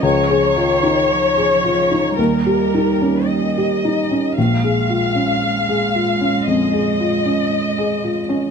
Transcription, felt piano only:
\new Staff \with { instrumentName = "Felt piano" } { \time 4/4 \key bes \dorian \tempo 4 = 57 des,16 aes'16 f'16 ees'8 aes'16 f'16 ees'16 ees,16 g'16 ees'16 des'8 g'16 ees'16 des'16 | bes,,16 aes'16 f'16 des'8 aes'16 f'16 des'16 f,16 aes'16 f'16 des'8 aes'16 f'16 des'16 | }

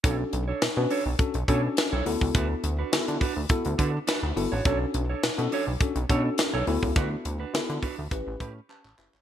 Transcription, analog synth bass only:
\new Staff \with { instrumentName = "Analog synth bass" } { \clef bass \time 4/4 \key d \major \tempo 4 = 104 b,,8 b,,8 b,16 b,16 r16 b,,16 r16 b,,16 b,8 r16 b,,16 d,16 cis,16 | d,8 d,8 d16 d16 r16 d,16 r16 d,16 d8 r16 d,16 g,,16 a,,16 | b,,8 b,,8 b,16 b,16 r16 b,,16 r16 b,,16 b,8 r16 b,,16 d,16 cis,16 | d,8 d,8 d16 d16 r16 d,16 a,,16 a,,16 a,8 r16 a,,16 fis,,16 g,,16 | }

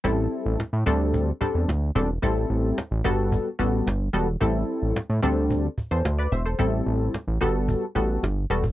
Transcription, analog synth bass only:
\new Staff \with { instrumentName = "Analog synth bass" } { \clef bass \time 4/4 \key a \dorian \tempo 4 = 110 a,,8 r16 a,,16 a,16 a,16 d,4 r16 e,16 d,8 e,,8 | a,,8 a,,8 r16 a,,16 g,,8. r16 a,,8 g,,8 e,,8 | a,,8 r16 a,,16 a,16 a,16 d,4 r16 e,16 d,8 e,,8 | a,,8 a,,8 r16 a,,16 g,,8. r16 a,,8 g,,8 e,,8 | }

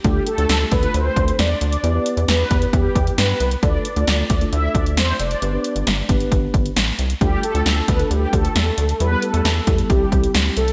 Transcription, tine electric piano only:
\new Staff \with { instrumentName = "Tine electric piano" } { \time 4/4 \key d \dorian \tempo 4 = 134 <a d' f' a'>8 r16 <a d' f' a'>8. r16 <a d' f' a'>4~ <a d' f' a'>16 r4 | <b e' g' b'>16 <b e' g' b'>8. r8 <b e' g' b'>4~ <b e' g' b'>16 r4 r16 | <a d' f' a'>8 r16 <a d' f' a'>8. r16 <a d' f' a'>4~ <a d' f' a'>16 r4 | <b d' g' b'>16 <b d' g' b'>8. r8 <b d' g' b'>4~ <b d' g' b'>16 r4 r16 |
<a d' f' a'>8 r16 <a d' f' a'>8. r16 <a d' f' a'>4~ <a d' f' a'>16 r4 | <g b e' g'>16 <g b e' g'>8. r8 <g b e' g'>8 <g c' e' g'>4. r8 | }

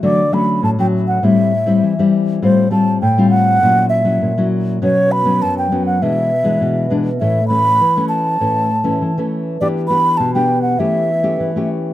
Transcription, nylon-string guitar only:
\new Staff \with { instrumentName = "Nylon-string guitar" } { \time 4/4 \key a \mixolydian \tempo 4 = 100 << { <fis a cis'>16 r16 <fis a cis'>8. <fis a cis'>8. <g c' e'>8 r16 <g c' e'>8 <g c' e'>8. | <g c' f'>8 <g c' f'>8 r16 <g c' f'>8. <fis cis' e'>8. <fis cis' e'>8 <fis cis' e'>8. | <fis b cis'>8. <fis b cis'>8. <fis b cis'>8 <e gis d'>8 r16 <e gis d'>8. <e gis d'>16 r16 | <e a cis'>16 r16 <e a cis'>8 r16 <e a cis'>8. <e a cis'>8 r16 <e a cis'>8 <e a cis'>8. |
<b d' g'>8 <b d' g'>8. <b d' g'>8. <a cis' g'>8 r16 <a cis' g'>8 <a cis' g'>8. | } \\ { d4 a,4 a,4 e4 | a,4 a,4 ais,4 ais,4 | b,4 fis,4 b,4 b,4 | a,4 e4 a,4 e4 |
e4 b,4 e4 e4 | } >> }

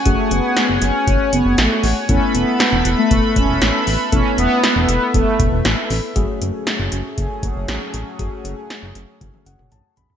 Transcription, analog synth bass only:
\new Staff \with { instrumentName = "Analog synth bass" } { \clef bass \time 4/4 \key fis \minor \tempo 4 = 118 fis,,16 r16 fis,,16 r8 fis,,16 fis,,16 r16 fis,,16 r16 fis,,16 fis,,16 a,,16 r16 a,,16 r16 | e,,16 r16 e,,16 r8 e,,16 e,,16 r16 e,,16 r16 e,,16 e,,16 a,,16 r16 a,,16 r16 | e,,16 r16 e,,16 r8 e,,16 e,,16 r16 e,,16 r16 e,,16 e,,16 a,,16 r16 a,,16 r16 | fis,,16 r16 fis,,16 r8 fis,,16 fis,,16 r16 fis,,16 r16 fis,,16 fis,,16 a,,16 r16 a,,16 r16 |
fis,,16 r16 fis,,16 r8 fis,,16 fis,,16 r16 fis,,16 r16 fis,,16 fis,,16 a,,16 r16 a,,16 r16 | }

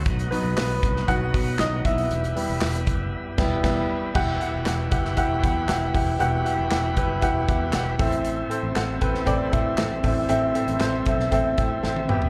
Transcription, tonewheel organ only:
<<
  \new Staff \with { instrumentName = "Tonewheel organ" } { \time 4/4 \key e \minor \tempo 4 = 117 dis'1 | e'1 | <e e' b'>1~ | <e e' b'>2.~ <e e' b'>8 e'8~ |
e'1~ | e'1 | }
  \new Staff \with { instrumentName = "Tonewheel organ" } { \time 4/4 \key e \minor << { b1~ | b1 | g'1~ | g'2.~ g'8 c'8~ |
c'1~ | c'2.~ c'8 b8 | } \\ { fis1 | g1 | fis'1~ | fis'2.~ fis'8 a8~ |
a1~ | a2.~ a8 g8 | } >> }
>>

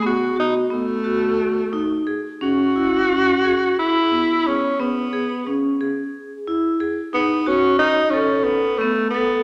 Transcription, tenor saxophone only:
\new Staff \with { instrumentName = "Tenor saxophone" } { \time 7/8 \key cis \minor \tempo 4 = 89 fis'8 dis'8 a2 r8 | fis'2 e'4 cis'8 | b4 r2 r8 | b8 cis'8 dis'8 cis'8 b8 a8 b8 | }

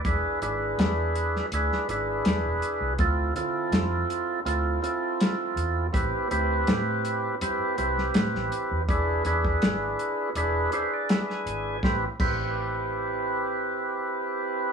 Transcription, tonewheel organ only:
\new Staff \with { instrumentName = "Tonewheel organ" } { \time 4/4 \key a \minor \tempo 4 = 81 << { r1 | r1 | r1 | r2 r8 c''16 d''16 e''16 gis''8. |
r1 | } \\ { <d' e' gis' b'>8 <d' e' gis' b'>4. <d' e' gis' b'>8 <d' e' gis' b'>4. | <c' e' f' a'>8 <c' e' f' a'>4. <c' e' f' a'>8 <c' e' f' a'>4. | <c' e' g' b'>8 <c' e' g' b'>4. <c' e' g' b'>8 <c' e' g' b'>4. | <d' e' gis' b'>8 <d' e' gis' b'>4. <d' e' gis' b'>8 <d' e' gis' b'>4. |
<c' e' g' b'>8 <c' e' g' b'>2.~ <c' e' g' b'>8 | } >> }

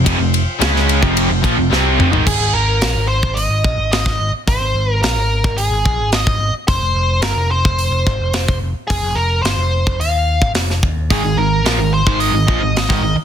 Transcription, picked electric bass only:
\new Staff \with { instrumentName = "Picked electric bass" } { \clef bass \time 4/4 \key aes \major \tempo 4 = 109 f,,16 f,,8 r16 des,8. f,,8 f,,16 bes,,16 f,,16 c,8 f,,16 aes,,16 | aes,,16 aes,,16 aes,,8 bes,,16 aes,,8 aes,,8 aes,,16 bes,,16 aes,,8 aes,,16 aes,,16 r16 | aes,,16 aes,,16 aes,,8 bes,,16 aes,,8 aes,,8 aes,,16 bes,,16 aes,,8 aes,,16 aes,,16 r16 | f,,16 f,,16 f,,8 g,,16 f,,8 f,,8 f,,16 aes,,16 f,,8 f,,16 f,,16 r16 |
f,,16 f,,16 f,,8 g,,16 f,,8 f,,16 ees,8. aes,,16 f,,8 ees,8 | aes,,16 aes,,16 aes,,8 bes,,16 aes,,8 aes,,8 aes,,16 bes,,16 aes,,8 aes,,16 aes,,16 r16 | }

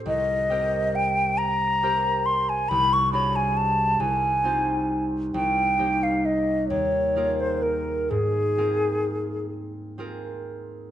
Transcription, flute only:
\new Staff \with { instrumentName = "Flute" } { \time 6/8 \key aes \major \tempo 4. = 45 ees''4 g''8 bes''4 c'''16 aes''16 | ces'''16 cis'''16 ces'''16 gis''16 a''8 aes''4~ aes''16 r16 | g''8. f''16 ees''8 des''8. c''16 bes'8 | aes'4. r4. | }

